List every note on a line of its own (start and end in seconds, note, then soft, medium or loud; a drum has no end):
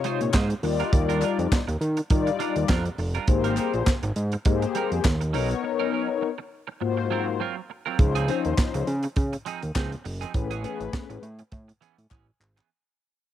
0.00 0.34 C3 medium
0.00 0.34 D#4 medium
0.00 0.34 F4 medium
0.00 0.34 C#5 loud
0.04 0.23 G#3 medium
0.04 0.22 D#4 loud
0.04 0.21 F4 loud
0.04 0.20 C5 loud
0.04 closed hi-hat medium
0.21 0.30 A#2 medium
0.21 muted clean electric guitar stroke medium
0.21 closed hi-hat soft
0.34 0.54 G#2 medium
0.34 0.53 G#3 medium
0.34 0.51 D#4 medium
0.34 0.50 F4 medium
0.34 0.49 C5 medium
0.34 kick loud
0.34 snare loud
0.34 clap loud
0.34 clap medium
0.50 muted clean electric guitar stroke soft
0.50 closed hi-hat soft
0.63 0.83 D#2 medium
0.63 1.58 G3 medium
0.63 1.58 D#4 medium
0.63 1.59 F4 medium
0.63 1.59 D5 loud
0.63 muted clean electric guitar stroke soft
0.63 open hi-hat medium
0.80 0.91 G3 medium
0.80 0.92 D4 medium
0.80 0.92 F4 medium
0.80 0.92 A#4 medium
0.80 closed hi-hat medium
0.93 1.24 D#2 loud
0.93 muted clean electric guitar stroke soft
0.93 kick loud
0.93 closed hi-hat medium
1.09 1.21 G3 medium
1.09 1.22 D4 medium
1.09 1.22 F4 medium
1.09 1.23 A#4 medium
1.09 closed hi-hat medium
1.22 1.37 G3 medium
1.22 1.38 D4 medium
1.22 1.38 F4 medium
1.22 1.38 A#4 medium
1.22 clap medium
1.22 closed hi-hat medium
1.39 1.47 F2 medium
1.39 muted clean electric guitar stroke soft
1.39 closed hi-hat soft
1.52 muted clean electric guitar stroke soft
1.52 kick loud
1.52 snare loud
1.52 clap loud
1.52 clap medium
1.68 1.77 D#2 loud
1.68 muted clean electric guitar stroke medium
1.68 closed hi-hat medium
1.81 2.01 D#3 loud
1.81 closed hi-hat medium
1.97 muted clean electric guitar stroke soft
1.97 closed hi-hat medium
2.10 2.31 D#3 loud
2.10 2.69 G3 medium
2.10 2.69 D#4 medium
2.10 2.69 F4 medium
2.10 2.69 D5 loud
2.10 muted clean electric guitar stroke soft
2.10 kick loud
2.10 closed hi-hat medium
2.27 muted clean electric guitar stroke soft
2.27 closed hi-hat soft
2.39 2.58 G3 medium
2.39 2.57 D4 loud
2.39 2.56 F4 medium
2.39 2.55 A#4 loud
2.39 closed hi-hat medium
2.56 2.65 D#2 medium
2.56 muted clean electric guitar stroke soft
2.56 closed hi-hat medium
2.69 2.89 F2 medium
2.69 2.88 G3 medium
2.69 2.86 D4 medium
2.69 2.85 F4 medium
2.69 2.84 A#4 loud
2.69 kick loud
2.69 snare loud
2.69 clap medium
2.85 muted clean electric guitar stroke soft
2.85 closed hi-hat medium
2.98 3.19 F1 medium
2.98 muted clean electric guitar stroke soft
2.98 open hi-hat medium
3.15 3.27 G3 medium
3.15 3.28 D4 medium
3.15 3.27 F4 medium
3.15 3.27 A#4 medium
3.15 closed hi-hat medium
3.28 3.59 G#1 loud
3.28 3.87 A#3 loud
3.28 3.87 G4 medium
3.28 3.87 G#4 medium
3.28 3.87 C5 loud
3.28 kick loud
3.28 closed hi-hat medium
3.44 3.56 G3 medium
3.44 3.57 C4 medium
3.44 3.58 D#4 medium
3.44 3.58 A#4 medium
3.44 closed hi-hat medium
3.57 3.73 G3 medium
3.57 3.73 C4 medium
3.57 3.73 D#4 medium
3.57 3.73 A#4 medium
3.57 clap medium
3.57 closed hi-hat medium
3.74 3.83 A#1 medium
3.74 closed hi-hat soft
3.87 muted clean electric guitar stroke soft
3.87 kick loud
3.87 snare loud
3.87 clap medium
3.87 clap loud
4.03 4.12 G#1 loud
4.03 muted clean electric guitar stroke soft
4.03 closed hi-hat medium
4.16 4.36 G#2 medium
4.16 closed hi-hat medium
4.32 muted clean electric guitar stroke medium
4.32 closed hi-hat medium
4.45 4.66 G#2 loud
4.45 5.05 A#3 loud
4.45 5.05 G4 medium
4.45 5.05 G#4 medium
4.45 5.05 C5 loud
4.45 muted clean electric guitar stroke soft
4.45 kick loud
4.45 closed hi-hat medium
4.62 muted clean electric guitar stroke soft
4.62 closed hi-hat soft
4.75 4.94 G3 medium
4.75 4.92 C4 medium
4.75 4.91 D#4 loud
4.75 4.91 A#4 loud
4.75 closed hi-hat medium
4.92 5.01 F2 medium
4.92 muted clean electric guitar stroke medium
4.92 closed hi-hat medium
5.04 5.36 D#2 loud
5.04 muted clean electric guitar stroke soft
5.04 kick loud
5.04 snare loud
5.04 clap medium
5.04 clap loud
5.21 muted clean electric guitar stroke soft
5.21 closed hi-hat medium
5.34 5.54 B1 medium
5.34 5.53 F#3 medium
5.34 6.29 B3 medium
5.34 5.50 C#4 medium
5.34 6.29 D#4 medium
5.34 5.50 D#4 medium
5.34 6.29 A#4 medium
5.34 5.49 A#4 medium
5.34 6.29 C#5 loud
5.34 open hi-hat medium
5.50 muted clean electric guitar stroke soft
5.50 closed hi-hat medium
5.63 muted clean electric guitar stroke soft
5.80 5.91 F#3 medium
5.80 5.91 C#4 medium
5.80 5.92 D#4 medium
5.80 5.93 A#4 medium
5.92 6.08 F#3 medium
5.92 6.08 C#4 medium
5.92 6.08 D#4 medium
5.92 6.08 A#4 medium
6.09 muted clean electric guitar stroke soft
6.22 muted clean electric guitar stroke soft
6.38 muted clean electric guitar stroke soft
6.67 muted clean electric guitar stroke soft
6.81 7.40 G#2 medium
6.81 7.40 A#3 medium
6.81 7.40 F4 medium
6.81 7.40 F#4 medium
6.81 7.40 C5 loud
6.81 muted clean electric guitar stroke soft
6.97 muted clean electric guitar stroke soft
7.11 7.29 F#3 medium
7.11 7.28 C4 medium
7.11 7.27 F4 medium
7.11 7.26 A#4 loud
7.27 muted clean electric guitar stroke soft
7.40 7.59 F#3 medium
7.40 7.56 C4 medium
7.40 7.56 F4 medium
7.40 7.55 A#4 medium
7.56 muted clean electric guitar stroke soft
7.70 muted clean electric guitar stroke soft
7.86 7.98 F#3 soft
7.86 7.98 C4 medium
7.86 7.98 F4 medium
7.86 7.98 A#4 medium
7.99 8.30 C#2 loud
7.99 8.13 F3 medium
7.99 8.13 C#4 medium
7.99 8.13 D#4 medium
7.99 8.14 C5 loud
7.99 muted clean electric guitar stroke soft
7.99 kick loud
7.99 closed hi-hat medium
8.15 8.27 F3 medium
8.15 8.28 C4 medium
8.15 8.28 D#4 medium
8.15 8.29 G#4 medium
8.15 closed hi-hat medium
8.28 8.44 F3 medium
8.28 8.87 F3 medium
8.28 8.44 C4 medium
8.28 8.87 C#4 medium
8.28 8.87 D#4 medium
8.28 8.44 D#4 medium
8.28 8.44 G#4 medium
8.28 8.87 C5 medium
8.28 closed hi-hat medium
8.45 8.54 D#2 medium
8.45 muted clean electric guitar stroke medium
8.45 closed hi-hat soft
8.58 muted clean electric guitar stroke soft
8.58 kick loud
8.58 snare loud
8.58 clap medium
8.58 clap loud
8.74 8.83 C#2 loud
8.74 muted clean electric guitar stroke soft
8.74 closed hi-hat medium
8.87 9.07 C#3 loud
8.87 closed hi-hat medium
9.03 muted clean electric guitar stroke medium
9.03 closed hi-hat medium
9.16 9.37 C#3 loud
9.16 muted clean electric guitar stroke soft
9.16 kick loud
9.16 closed hi-hat medium
9.33 muted clean electric guitar stroke medium
9.33 closed hi-hat medium
9.46 9.65 F3 medium
9.46 9.63 C4 medium
9.46 9.62 D#4 loud
9.46 9.61 G#4 loud
9.46 closed hi-hat medium
9.63 9.72 D#2 medium
9.63 muted clean electric guitar stroke soft
9.63 closed hi-hat medium
9.75 9.96 C#2 loud
9.75 9.94 F3 medium
9.75 9.92 C4 medium
9.75 9.91 D#4 medium
9.75 9.91 G#4 medium
9.75 kick loud
9.75 snare loud
9.75 clap loud
9.75 clap medium
9.92 muted clean electric guitar stroke soft
9.92 closed hi-hat soft
10.05 10.25 F#1 medium
10.05 muted clean electric guitar stroke soft
10.05 open hi-hat medium
10.21 10.33 F3 medium
10.21 10.34 C4 medium
10.21 10.34 D#4 medium
10.21 10.33 G#4 medium
10.21 closed hi-hat medium
10.34 10.66 A1 loud
10.34 10.48 A3 medium
10.34 10.49 C#4 medium
10.34 10.49 G#4 medium
10.34 10.49 B4 loud
10.34 kick loud
10.34 closed hi-hat medium
10.51 10.62 E3 medium
10.51 10.63 B3 medium
10.51 10.63 C#4 medium
10.51 10.64 G#4 medium
10.51 closed hi-hat medium
10.63 10.79 E3 medium
10.63 11.22 A3 medium
10.63 10.79 B3 medium
10.63 11.22 C#4 medium
10.63 10.79 C#4 medium
10.63 11.22 G#4 medium
10.63 10.79 G#4 medium
10.63 11.22 B4 loud
10.63 closed hi-hat medium
10.80 10.89 A1 loud
10.80 muted clean electric guitar stroke soft
10.80 closed hi-hat soft
10.93 muted clean electric guitar stroke soft
10.93 kick loud
10.93 snare loud
10.93 clap loud
10.93 clap medium
11.10 11.19 A1 medium
11.10 muted clean electric guitar stroke soft
11.10 closed hi-hat medium
11.23 11.43 A2 loud
11.23 closed hi-hat medium
11.39 muted clean electric guitar stroke medium
11.39 closed hi-hat medium
11.52 11.72 A2 loud
11.52 muted clean electric guitar stroke soft
11.52 kick loud
11.52 closed hi-hat medium
11.68 muted clean electric guitar stroke soft
11.68 closed hi-hat medium
11.81 12.00 E3 medium
11.81 11.98 B3 medium
11.81 11.97 C#4 medium
11.81 11.96 G#4 medium
11.81 closed hi-hat medium
11.97 12.07 A2 medium
11.97 muted clean electric guitar stroke soft
11.97 closed hi-hat medium
12.10 12.31 A1 medium
12.10 12.29 E3 medium
12.10 12.28 B3 medium
12.10 12.27 C#4 medium
12.10 kick loud
12.10 clap medium
12.12 12.26 G#4 medium
12.12 clap medium
12.27 muted clean electric guitar stroke medium
12.40 12.60 G#1 medium
12.40 muted clean electric guitar stroke soft
12.40 clap medium
12.57 12.70 E3 medium
12.57 12.69 B3 medium
12.57 12.69 C#4 medium
12.57 12.68 G#4 medium
12.57 clap medium